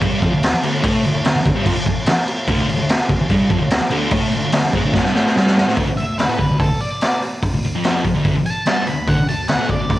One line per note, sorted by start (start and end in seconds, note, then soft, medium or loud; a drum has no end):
0.01 0.21 G2 medium
0.01 0.21 G3 loud
0.01 kick medium
0.01 crash medium
0.21 0.31 F2 medium
0.21 0.32 F3 loud
0.21 kick medium
0.21 crash medium
0.31 0.48 D2 medium
0.43 snare loud
0.43 crash medium
0.62 0.82 D2 loud
0.62 0.83 D3 loud
0.62 crash medium
0.83 1.03 A2 medium
0.83 1.03 A3 loud
0.83 kick loud
0.83 crash medium
1.03 1.13 D2 medium
1.03 crash medium
1.14 1.24 D2 medium
1.25 1.34 D2 medium
1.25 snare loud
1.25 crash medium
1.36 muted distorted electric guitar stroke medium
1.46 1.55 D2 medium
1.46 kick medium
1.46 crash medium
1.55 1.65 G2 medium
1.55 1.65 G3 medium
1.66 1.75 F2 loud
1.66 1.76 F3 loud
1.66 kick medium
1.66 crash medium
1.76 muted distorted electric guitar stroke medium
1.86 kick medium
1.86 crash medium
2.06 muted distorted electric guitar stroke medium
2.06 snare loud
2.06 crash medium
2.28 crash medium
2.48 2.66 D2 medium
2.48 2.68 D3 loud
2.48 kick loud
2.48 crash medium
2.67 2.77 D2 medium
2.67 crash medium
2.78 2.95 D2 medium
2.89 snare loud
2.89 crash medium
3.09 3.19 D2 medium
3.09 kick medium
3.09 crash medium
3.20 muted distorted electric guitar stroke medium
3.29 3.49 G2 medium
3.29 3.50 G3 loud
3.29 kick medium
3.29 crash medium
3.50 3.59 F2 medium
3.50 3.60 F3 loud
3.50 kick medium
3.50 crash medium
3.59 3.76 D2 medium
3.71 snare loud
3.71 crash medium
3.90 4.11 D2 medium
3.90 4.11 D3 loud
3.90 crash medium
4.11 4.31 A2 medium
4.11 4.32 A3 loud
4.11 kick loud
4.11 crash medium
4.32 4.42 D2 medium
4.32 crash medium
4.43 4.52 D2 medium
4.52 4.63 D2 medium
4.52 snare loud
4.52 crash loud
4.64 muted distorted electric guitar stroke medium
4.73 4.83 G#2 medium
4.73 4.84 G#3 medium
4.73 kick medium
4.73 crash medium
4.84 4.94 D2 medium
4.84 4.94 D3 medium
4.94 5.04 A2 medium
4.94 5.04 A3 loud
4.94 kick medium
4.94 snare medium
5.05 5.14 G2 loud
5.05 5.15 G3 loud
5.05 snare medium
5.15 5.35 A2 medium
5.15 5.35 A3 medium
5.15 snare medium
5.26 snare medium
5.36 5.66 G2 medium
5.36 5.67 G3 loud
5.36 snare medium
5.47 snare medium
5.57 snare loud
5.66 5.76 A2 medium
5.66 5.76 A3 loud
5.66 snare medium
5.77 5.87 D2 medium
5.77 5.87 D3 loud
5.77 kick loud
5.77 open hi-hat medium
5.88 muted distorted electric guitar stroke medium
5.97 6.15 D2 medium
5.97 6.17 E5 medium
5.97 open hi-hat medium
6.18 6.28 D2 medium
6.18 6.58 B4 medium
6.18 snare loud
6.18 open hi-hat medium
6.29 6.38 A2 medium
6.29 6.39 A3 medium
6.39 6.49 D2 medium
6.39 kick medium
6.39 open hi-hat soft
6.51 6.59 D2 medium
6.60 6.70 D2 medium
6.60 6.80 A4 medium
6.60 kick loud
6.60 open hi-hat medium
6.80 7.20 D5 medium
6.80 open hi-hat medium
7.01 snare loud
7.01 open hi-hat medium
7.22 open hi-hat medium
7.42 kick loud
7.42 open hi-hat medium
7.54 7.63 D2 medium
7.62 7.74 D2 medium
7.62 open hi-hat medium
7.75 8.04 F2 medium
7.75 8.05 F3 medium
7.84 snare loud
7.84 open hi-hat medium
8.04 muted distorted electric guitar stroke medium
8.04 kick medium
8.04 open hi-hat medium
8.16 8.35 D2 medium
8.16 8.35 D3 medium
8.25 kick loud
8.25 open hi-hat medium
8.37 muted distorted electric guitar stroke medium
8.46 8.86 A5 medium
8.46 open hi-hat medium
8.66 8.86 G2 medium
8.66 8.87 G3 loud
8.66 snare loud
8.66 open hi-hat medium
8.87 9.04 D2 medium
8.87 9.07 B5 medium
8.87 open hi-hat medium
9.07 9.17 D2 medium
9.07 9.17 D3 medium
9.07 9.28 F#5 medium
9.07 kick loud
9.07 open hi-hat medium
9.18 muted distorted electric guitar stroke medium
9.29 9.45 D2 medium
9.29 9.48 A5 medium
9.29 open hi-hat medium
9.48 9.58 D2 medium
9.48 9.69 F#5 medium
9.48 snare loud
9.48 open hi-hat medium
9.59 9.68 A2 medium
9.59 9.69 A3 medium
9.69 9.78 D2 medium
9.69 9.99 D5 medium
9.69 kick medium
9.69 open hi-hat soft
9.79 9.88 D2 medium
9.89 9.99 D2 medium
9.89 kick loud
9.89 open hi-hat medium